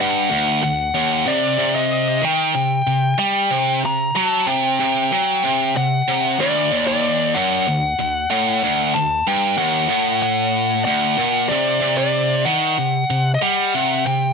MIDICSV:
0, 0, Header, 1, 3, 480
1, 0, Start_track
1, 0, Tempo, 638298
1, 962, Time_signature, 4, 2, 24, 8
1, 10778, End_track
2, 0, Start_track
2, 0, Title_t, "Lead electric guitar"
2, 0, Program_c, 0, 29
2, 7, Note_on_c, 0, 78, 104
2, 468, Note_off_c, 0, 78, 0
2, 477, Note_on_c, 0, 78, 97
2, 960, Note_on_c, 0, 74, 101
2, 974, Note_off_c, 0, 78, 0
2, 1317, Note_off_c, 0, 74, 0
2, 1320, Note_on_c, 0, 75, 96
2, 1690, Note_on_c, 0, 79, 111
2, 1692, Note_off_c, 0, 75, 0
2, 2392, Note_off_c, 0, 79, 0
2, 2401, Note_on_c, 0, 79, 97
2, 2853, Note_off_c, 0, 79, 0
2, 2900, Note_on_c, 0, 82, 107
2, 3129, Note_off_c, 0, 82, 0
2, 3132, Note_on_c, 0, 81, 108
2, 3361, Note_on_c, 0, 79, 92
2, 3375, Note_off_c, 0, 81, 0
2, 3848, Note_off_c, 0, 79, 0
2, 3857, Note_on_c, 0, 79, 104
2, 4336, Note_off_c, 0, 79, 0
2, 4339, Note_on_c, 0, 78, 86
2, 4817, Note_on_c, 0, 74, 104
2, 4827, Note_off_c, 0, 78, 0
2, 5147, Note_off_c, 0, 74, 0
2, 5168, Note_on_c, 0, 74, 104
2, 5522, Note_on_c, 0, 78, 101
2, 5538, Note_off_c, 0, 74, 0
2, 6237, Note_off_c, 0, 78, 0
2, 6246, Note_on_c, 0, 78, 95
2, 6724, Note_on_c, 0, 81, 93
2, 6742, Note_off_c, 0, 78, 0
2, 6973, Note_off_c, 0, 81, 0
2, 6976, Note_on_c, 0, 79, 88
2, 7202, Note_off_c, 0, 79, 0
2, 7205, Note_on_c, 0, 78, 95
2, 7679, Note_off_c, 0, 78, 0
2, 7688, Note_on_c, 0, 78, 111
2, 8138, Note_off_c, 0, 78, 0
2, 8159, Note_on_c, 0, 78, 101
2, 8640, Note_on_c, 0, 74, 96
2, 8658, Note_off_c, 0, 78, 0
2, 8999, Note_off_c, 0, 74, 0
2, 9008, Note_on_c, 0, 74, 86
2, 9365, Note_on_c, 0, 78, 109
2, 9379, Note_off_c, 0, 74, 0
2, 10003, Note_off_c, 0, 78, 0
2, 10036, Note_on_c, 0, 75, 77
2, 10088, Note_off_c, 0, 75, 0
2, 10094, Note_on_c, 0, 78, 82
2, 10575, Note_off_c, 0, 78, 0
2, 10578, Note_on_c, 0, 79, 103
2, 10778, Note_off_c, 0, 79, 0
2, 10778, End_track
3, 0, Start_track
3, 0, Title_t, "Distorted electric guitar"
3, 0, Program_c, 1, 30
3, 0, Note_on_c, 1, 43, 104
3, 223, Note_off_c, 1, 43, 0
3, 226, Note_on_c, 1, 38, 100
3, 459, Note_off_c, 1, 38, 0
3, 468, Note_on_c, 1, 38, 73
3, 667, Note_off_c, 1, 38, 0
3, 709, Note_on_c, 1, 39, 104
3, 945, Note_off_c, 1, 39, 0
3, 948, Note_on_c, 1, 48, 115
3, 1182, Note_off_c, 1, 48, 0
3, 1191, Note_on_c, 1, 48, 118
3, 1665, Note_on_c, 1, 51, 95
3, 1669, Note_off_c, 1, 48, 0
3, 1907, Note_off_c, 1, 51, 0
3, 1915, Note_on_c, 1, 48, 74
3, 2111, Note_off_c, 1, 48, 0
3, 2159, Note_on_c, 1, 48, 75
3, 2353, Note_off_c, 1, 48, 0
3, 2394, Note_on_c, 1, 55, 111
3, 2631, Note_off_c, 1, 55, 0
3, 2636, Note_on_c, 1, 48, 110
3, 2873, Note_off_c, 1, 48, 0
3, 2889, Note_on_c, 1, 48, 77
3, 3078, Note_off_c, 1, 48, 0
3, 3123, Note_on_c, 1, 54, 103
3, 3356, Note_on_c, 1, 48, 98
3, 3357, Note_off_c, 1, 54, 0
3, 3593, Note_off_c, 1, 48, 0
3, 3606, Note_on_c, 1, 48, 111
3, 3839, Note_off_c, 1, 48, 0
3, 3843, Note_on_c, 1, 54, 104
3, 4077, Note_off_c, 1, 54, 0
3, 4091, Note_on_c, 1, 48, 99
3, 4321, Note_off_c, 1, 48, 0
3, 4333, Note_on_c, 1, 48, 72
3, 4521, Note_off_c, 1, 48, 0
3, 4576, Note_on_c, 1, 48, 117
3, 4804, Note_off_c, 1, 48, 0
3, 4812, Note_on_c, 1, 38, 107
3, 5042, Note_off_c, 1, 38, 0
3, 5055, Note_on_c, 1, 39, 95
3, 5524, Note_off_c, 1, 39, 0
3, 5531, Note_on_c, 1, 42, 109
3, 5762, Note_off_c, 1, 42, 0
3, 5775, Note_on_c, 1, 38, 69
3, 5963, Note_off_c, 1, 38, 0
3, 6013, Note_on_c, 1, 38, 64
3, 6202, Note_off_c, 1, 38, 0
3, 6248, Note_on_c, 1, 45, 114
3, 6481, Note_off_c, 1, 45, 0
3, 6495, Note_on_c, 1, 38, 104
3, 6725, Note_off_c, 1, 38, 0
3, 6736, Note_on_c, 1, 38, 84
3, 6924, Note_off_c, 1, 38, 0
3, 6975, Note_on_c, 1, 43, 100
3, 7202, Note_off_c, 1, 43, 0
3, 7205, Note_on_c, 1, 39, 93
3, 7437, Note_off_c, 1, 39, 0
3, 7440, Note_on_c, 1, 45, 94
3, 8157, Note_off_c, 1, 45, 0
3, 8166, Note_on_c, 1, 38, 96
3, 8400, Note_off_c, 1, 38, 0
3, 8406, Note_on_c, 1, 46, 108
3, 8640, Note_off_c, 1, 46, 0
3, 8654, Note_on_c, 1, 48, 127
3, 8873, Note_off_c, 1, 48, 0
3, 8882, Note_on_c, 1, 48, 115
3, 9358, Note_off_c, 1, 48, 0
3, 9370, Note_on_c, 1, 51, 102
3, 9601, Note_off_c, 1, 51, 0
3, 9611, Note_on_c, 1, 48, 73
3, 9801, Note_off_c, 1, 48, 0
3, 9854, Note_on_c, 1, 48, 70
3, 10042, Note_off_c, 1, 48, 0
3, 10092, Note_on_c, 1, 55, 102
3, 10322, Note_off_c, 1, 55, 0
3, 10337, Note_on_c, 1, 48, 106
3, 10564, Note_off_c, 1, 48, 0
3, 10573, Note_on_c, 1, 48, 74
3, 10761, Note_off_c, 1, 48, 0
3, 10778, End_track
0, 0, End_of_file